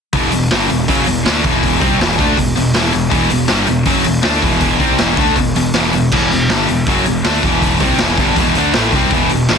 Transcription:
0.13 E1 E2 B2 E3, kick, open hi-hat
0.32 E1 E2 B2, open hi-hat
0.51 G1 G2 D3 G3, snare, open hi-hat
0.69 E1 E2 B2, open hi-hat
0.88 F#1 F#2 C#3 F#3, kick, open hi-hat
1.07 E1 E2 B2, open hi-hat
1.26 D2 D3 A3 D4, snare, open hi-hat
1.44 E1 E2 B2 E3, kick, open hi-hat
1.63 kick, open hi-hat
1.79 C2 C3 G3 C4, kick, open hi-hat
1.98 E1 E2 B2 E3, snare, open hi-hat
2.17 D2 D3 A3 D4, kick, open hi-hat
2.36 E1 E2 B2, kick, open hi-hat
2.56 E1 E2 B2, open hi-hat
2.74 E1 E2 B2 E3, snare, open hi-hat
2.93 E1 E2 B2, open hi-hat
3.10 E1 E2 B2 E3, kick, open hi-hat
3.30 E1 E2 B2, open hi-hat
3.48 G1 G2 D3 G3, snare, open hi-hat
3.67 E1 E2 B2, open hi-hat
3.85 F#1 F#2 C#3 F#3, kick, open hi-hat
4.04 E1 E2 B2, open hi-hat
4.22 D2 D3 A3 D4, snare, open hi-hat
4.42 E1 E2 B2 E3, kick, open hi-hat
4.60 kick, open hi-hat
4.79 C2 C3 G3 C4, kick, open hi-hat
4.98 E1 E2 B2 E3, snare, open hi-hat
5.17 D2 D3 A3 D4, kick, open hi-hat
5.35 E1 E2 B2, kick, open hi-hat
5.56 E1 E2 B2, open hi-hat
5.74 E1 E2 B2 E3, snare, open hi-hat
5.93 E1 E2 B2, open hi-hat
6.12 E1 E2 B2 E3, kick, crash
6.31 E1 E2 B2, open hi-hat
6.49 G1 G2 D3 G3, snare, open hi-hat
6.68 E1 E2 B2, open hi-hat
6.86 F#1 F#2 C#3 F#3, kick, open hi-hat
7.06 E1 E2 B2, open hi-hat
7.24 D2 D3 A3 D4, snare, open hi-hat
7.43 E1 E2 B2 E3, kick, open hi-hat
7.62 kick, open hi-hat
7.80 C2 C3 G3 C4, kick, open hi-hat
7.98 E1 E2 B2 E3, snare, open hi-hat
8.18 G1 G2 D3 G3, kick, open hi-hat
8.36 E1 E2 B2 E3, kick, open hi-hat
8.55 D2 D3 A3 D4, open hi-hat
8.73 A1 A2 E3 A3, snare, open hi-hat
8.92 C2 C3 G3 C4, kick, open hi-hat
9.10 E1 E2 B2 E3, kick, open hi-hat
9.29 E1 E2 B2, open hi-hat
9.48 G1 G2 D3 G3, snare, open hi-hat

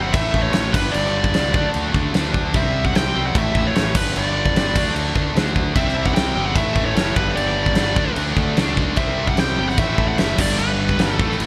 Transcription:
Already playing: G1 C3 G3 C4
0.02 F#5
0.13 A1 A2 E3 E5, kick, crash
0.17 A3
0.34 A1, kick
0.43 C#5
0.53 A1 C#5, snare, crash
0.73 G1 G2 D3 B4, kick, crash
0.78 G3
0.92 G1 D5, crash
1.05 snare
1.24 kick
1.34 C#2 G2 D3 G3, snare, crash
1.54 D2 D3 A3 D4, kick
1.74 D2, crash
1.94 D2, kick
2.14 D2 D3 A3 D4, snare, crash
2.34 kick
2.54 C2 C3 G3 C4 E5, kick, crash
2.85 F#5, kick
2.95 C2 G5, snare, crash
3.16 C2 C3 G3 C4
3.27 F#5
3.35 A1 A2 E3 A3 E5, kick, crash
3.55 A1, kick
3.67 C#5
3.75 A1 C#5, snare, crash
3.95 G1 G2 D3 G3 B4, kick, crash
4.16 G1 D5, crash
4.46 kick
4.56 G1 G2 D3 G3, snare, crash
4.75 D2 D3 A3 D4, kick, crash
4.95 D2, crash
5.16 D2, kick
5.35 D2 D3 A3 D4, snare, crash
5.56 kick
5.75 C2 C3 G3 C4 E5, kick, crash
5.88 snare
6.06 F#5, kick
6.15 C2 C3 G3 C4 G5, snare, crash
6.35 G1 C3 G3 C4
6.46 F#5
6.55 A1 A2 E3 A3 E5, kick, crash
6.76 A1, kick
6.85 C#5
6.95 F#1 A2 E3 A3 C#5, snare, crash
7.15 G1 G2 D3 G3 B4, kick
7.35 G1 G2 D3 G3 D5, crash
7.66 kick
7.75 G1 G2 D3 G3, snare, crash
7.96 D2 D3 A3 D4, kick
8.16 D2 D3 A3 D4, crash
8.36 D2, kick
8.57 C#2 D3 A3 D4, snare, crash
8.77 D3 A3 D4, kick
8.96 C2 C3 G3 C4 E5, kick, crash
9.27 F#5, kick
9.37 C2 C3 G3 C4 G5, snare, crash
9.58 G1 C3 G3 C4
9.69 F#5, snare
9.78 A1 A2 E3 A3 E5, kick, crash
9.98 A1, kick
10.08 F#5
10.18 F#1 A2 E3 A3 E5, snare, crash
10.38 G1 G2 D3 G3 D5, kick, crash
10.58 G1 G2 D3 G3 B4, crash
10.89 kick
10.99 G1 G2 D3 G3, snare, crash
11.14 A4
11.19 A1 A2 E3 A3, kick
11.31 snare
11.39 A1 A2 E3 A3, crash

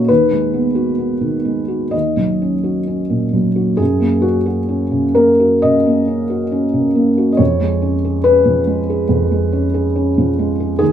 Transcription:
Already playing: A#2 A#3 C#4 F#4 C#5 D#5
0.08 D#2 B4
0.31 G#3
0.54 B3
0.75 F#4
0.98 B3
1.21 D#3
1.45 G#3
1.68 F#4
1.91 D#2 D#5
2.17 F#3
2.42 C#4
2.64 F#4
2.87 C#4
3.10 A#2
3.33 F#3
3.56 F#4
3.77 F#2 G#4
4.00 A#3
4.22 C#4 F#4
4.46 F#4
4.68 C#4
4.91 C#3
5.15 A#3 A#4
5.40 F#4
5.62 C#3 D#5
5.87 A#3
6.08 C#4
6.30 F#4
6.52 C#4
6.73 C#3
6.95 A#3
7.18 F#4
7.32 D#5
7.37 F2 C#5
7.61 G#3
7.82 C#4
8.05 G#4
8.24 C#4 B4
8.46 F3
8.67 G#3
8.90 G#4
9.09 F2
9.31 G#3
9.52 C#4
9.74 G#4
9.96 C#4
10.18 F3
10.39 G#3
10.60 G#4
10.79 D#2 G#4

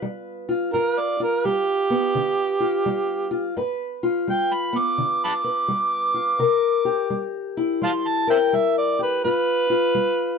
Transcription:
Already playing: B3 F4 B4
0.02 G3
0.49 F4
0.73 G2 F4 A#4
0.99 D5
1.20 F4 A#4
1.45 G3 G4
1.90 B3
2.15 D3
2.60 F4
2.86 G3
3.31 F4
3.57 G2 B4
4.03 F4
4.28 G3 G5
4.53 B5
4.73 B3
4.78 D6
4.98 D3
5.25 A5 B5 D6
5.44 B4
5.68 G3
6.14 F4
6.39 C3 A#4
6.85 G4
7.10 G3
7.57 E4
7.82 G3 F5 A5 C6
8.07 A5
8.27 A#4 C5 E5 G5
8.53 G3 E5
8.78 D5
8.99 G4 B4
9.24 G2 F4 B4
9.70 F4
9.95 G3

